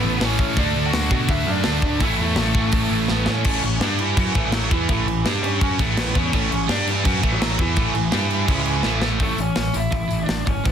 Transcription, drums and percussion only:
0.21 snare, open hi-hat
0.39 kick
0.57 kick, open hi-hat
0.93 snare, open hi-hat
1.11 kick
1.29 kick, open hi-hat
1.64 snare, open hi-hat
1.82 kick
2.00 kick, open hi-hat
2.36 snare, open hi-hat
2.55 kick
2.72 kick, open hi-hat
3.08 snare
3.26 snare
3.44 kick, crash
3.63 crash
3.81 snare, crash
3.98 crash
4.17 kick, crash
4.35 kick, crash
4.52 snare, crash
4.71 kick, crash
4.89 kick, crash
5.08 crash
5.25 snare, crash
5.44 crash
5.61 kick, crash
5.79 kick, crash
5.97 snare, crash
6.15 kick, crash
6.33 kick, crash
6.52 crash
6.69 snare, crash
6.87 crash
7.05 kick, crash
7.23 kick, crash
7.42 snare, crash
7.59 kick, crash
7.76 kick, crash
7.95 crash
8.12 snare, crash
8.30 crash
8.48 kick, crash
8.65 crash
8.83 snare
9.02 snare
9.20 kick, open hi-hat
9.38 open hi-hat
9.56 snare, open hi-hat
9.74 open hi-hat
9.92 kick, open hi-hat
10.11 open hi-hat
10.29 snare, open hi-hat
10.47 kick, open hi-hat
10.65 kick, open hi-hat

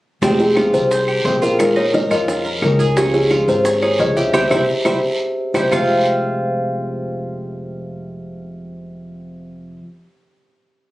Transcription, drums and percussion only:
0.23 high bongo, long guiro, maracas
0.40 high bongo, maracas
0.56 high bongo, short guiro, claves, maracas
0.74 high bongo, short guiro, maracas
0.91 high bongo, long guiro, maracas
1.08 high bongo, claves, maracas
1.25 high bongo, low bongo, short guiro, maracas
1.42 short guiro, maracas
1.59 high bongo, long guiro, claves, maracas
1.77 high bongo, maracas
1.94 high bongo, short guiro, maracas
2.11 high bongo, short guiro, claves, maracas
2.28 high bongo, long guiro, maracas
2.45 high bongo, maracas
2.62 high bongo, low bongo, short guiro, claves, maracas
2.80 short guiro, maracas
2.97 high bongo, long guiro, maracas
3.14 high bongo, maracas
3.31 high bongo, short guiro, claves, maracas
3.48 high bongo, short guiro, maracas
3.65 high bongo, long guiro, maracas
3.82 high bongo, claves, maracas
4.00 high bongo, low bongo, short guiro, maracas
4.17 short guiro, maracas
4.34 high bongo, long guiro, claves, maracas
4.51 high bongo, long guiro, claves, maracas
4.85 high bongo, long guiro, claves, maracas
5.55 high bongo, long guiro, claves, maracas
5.72 low bongo, long guiro, claves, maracas

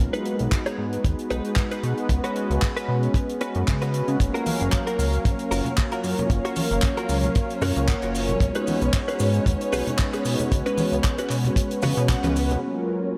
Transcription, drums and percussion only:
0.14 closed hi-hat
0.26 closed hi-hat
0.39 closed hi-hat
0.51 kick, clap, closed hi-hat
0.66 closed hi-hat
0.93 closed hi-hat
1.04 kick, closed hi-hat
1.19 closed hi-hat
1.30 closed hi-hat
1.45 closed hi-hat
1.56 kick, clap, closed hi-hat
1.71 closed hi-hat
1.83 closed hi-hat
1.98 closed hi-hat
2.09 kick, closed hi-hat
2.24 closed hi-hat
2.36 closed hi-hat
2.51 closed hi-hat
2.62 kick, clap, closed hi-hat
2.77 closed hi-hat
3.03 closed hi-hat
3.14 kick, closed hi-hat
3.29 closed hi-hat
3.41 closed hi-hat
3.55 closed hi-hat
3.68 kick, clap, closed hi-hat
3.82 closed hi-hat
3.94 closed hi-hat
4.08 closed hi-hat
4.20 kick, closed hi-hat, maracas
4.35 closed hi-hat
4.46 open hi-hat, high conga, maracas
4.60 closed hi-hat, maracas
4.72 kick, clap, closed hi-hat, maracas
4.87 closed hi-hat
4.99 open hi-hat, maracas
5.13 closed hi-hat, maracas
5.25 kick, closed hi-hat, maracas
5.39 closed hi-hat, maracas
5.51 open hi-hat, maracas
5.65 closed hi-hat, low conga, maracas
5.78 kick, clap, closed hi-hat, maracas
5.92 closed hi-hat, maracas
6.04 open hi-hat, maracas
6.18 closed hi-hat, low conga, maracas
6.30 kick, closed hi-hat, maracas
6.45 closed hi-hat
6.56 open hi-hat, high conga, maracas
6.70 closed hi-hat, maracas
6.82 kick, clap, closed hi-hat, maracas
6.97 closed hi-hat
7.09 open hi-hat, maracas
7.23 closed hi-hat, low conga, maracas
7.35 kick, closed hi-hat, maracas
7.50 closed hi-hat, maracas
7.62 open hi-hat, low conga, maracas
7.76 closed hi-hat, maracas
7.88 kick, clap, closed hi-hat, maracas
8.02 closed hi-hat, maracas
8.15 open hi-hat, maracas
8.29 closed hi-hat, low conga, maracas
8.40 kick, closed hi-hat, maracas
8.55 closed hi-hat
8.67 open hi-hat, high conga, maracas
8.82 closed hi-hat, maracas
8.93 kick, clap, closed hi-hat, maracas
9.08 closed hi-hat
9.19 open hi-hat, maracas
9.34 closed hi-hat, maracas
9.46 kick, closed hi-hat, maracas
9.61 closed hi-hat, maracas
9.72 open hi-hat, maracas
9.87 closed hi-hat, low conga, maracas
9.98 kick, clap, closed hi-hat, maracas
10.13 closed hi-hat, maracas
10.25 open hi-hat, maracas
10.39 closed hi-hat, low conga, maracas
10.52 kick, closed hi-hat, maracas
10.66 closed hi-hat, maracas
10.77 open hi-hat, high conga, maracas
10.93 closed hi-hat, maracas
11.03 kick, clap, closed hi-hat, maracas
11.18 closed hi-hat, maracas
11.29 clap, open hi-hat, maracas
11.45 closed hi-hat, low conga, maracas
11.56 kick, closed hi-hat, maracas
11.71 closed hi-hat, maracas
11.82 open hi-hat, high conga, low conga, maracas
11.98 closed hi-hat, maracas
12.09 kick, clap, closed hi-hat, maracas
12.24 clap, closed hi-hat, high conga, maracas
12.36 open hi-hat, maracas
12.50 closed hi-hat, low conga, maracas

